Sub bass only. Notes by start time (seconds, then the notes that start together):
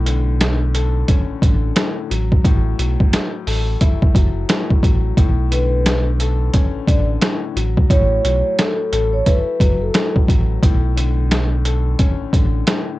Already playing: B1
1.30 A1
1.42 A1
2.11 A1
2.45 A1
2.79 B1
3.47 A1
4.15 F#1
4.83 A1
5.17 B1
6.75 A1
6.88 A1
7.56 A1
7.90 A1
8.24 B1
8.92 A1
9.60 F#1
10.28 A1
10.63 B1
12.20 A1
12.33 A1